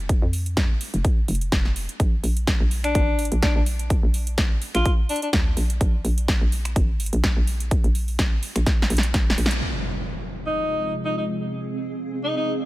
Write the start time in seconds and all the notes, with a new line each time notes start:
Already playing: F1
0.09 kick, closed hi-hat
0.22 F2
0.33 open hi-hat
0.46 closed hi-hat
0.57 kick, snare, closed hi-hat
0.81 open hi-hat
0.94 F1, closed hi-hat
1.05 kick, closed hi-hat
1.28 F1, open hi-hat
1.35 closed hi-hat
1.41 closed hi-hat
1.52 F1, kick, snare, closed hi-hat
1.65 snare
1.76 open hi-hat
1.89 closed hi-hat
2.00 A#1, kick, closed hi-hat
2.23 A#1, open hi-hat
2.37 closed hi-hat
2.47 kick, snare, closed hi-hat
2.60 A#1
2.71 open hi-hat
2.84 D4, finger snap, closed hi-hat
2.95 G#1, kick, closed hi-hat
3.19 open hi-hat
3.25 closed hi-hat
3.32 A#1, closed hi-hat
3.42 D4, kick, snare, closed hi-hat
3.56 A#1 D4
3.66 open hi-hat
3.79 closed hi-hat
3.90 kick, closed hi-hat
4.03 A#1
4.14 open hi-hat
4.27 closed hi-hat
4.38 kick, snare, closed hi-hat
4.62 open hi-hat
4.75 A#1 F4, finger snap, closed hi-hat
4.85 kick, closed hi-hat
5.09 D4, open hi-hat
5.16 closed hi-hat
5.22 D4, closed hi-hat
5.33 D2, kick, snare, closed hi-hat
5.57 A#1, open hi-hat
5.70 closed hi-hat
5.81 A#1, kick, closed hi-hat
6.05 A#1, open hi-hat
6.18 closed hi-hat
6.28 kick, snare, closed hi-hat
6.41 A#1
6.52 open hi-hat
6.65 finger snap, closed hi-hat
6.76 G#1, kick, closed hi-hat
7.00 open hi-hat
7.06 closed hi-hat
7.13 A#1, closed hi-hat
7.24 kick, snare, closed hi-hat
7.37 A#1
7.47 open hi-hat
7.60 closed hi-hat
7.71 kick, closed hi-hat
7.84 A#1, closed hi-hat
7.95 open hi-hat
8.08 open hi-hat
8.19 kick, snare, closed hi-hat
8.43 open hi-hat
8.56 A#1, finger snap, closed hi-hat
8.66 kick, snare, closed hi-hat
8.82 snare
8.90 A#1, open hi-hat
8.97 snare, closed hi-hat
9.03 closed hi-hat
9.14 kick, snare, closed hi-hat
9.30 snare
9.38 A#1, open hi-hat
9.46 snare
9.51 closed hi-hat
9.62 C3 F3 G#3 C4 F4, impact
9.76 G#4
10.46 D#4
11.01 D#4 F5
11.18 D#4
12.24 D#4
12.37 D#4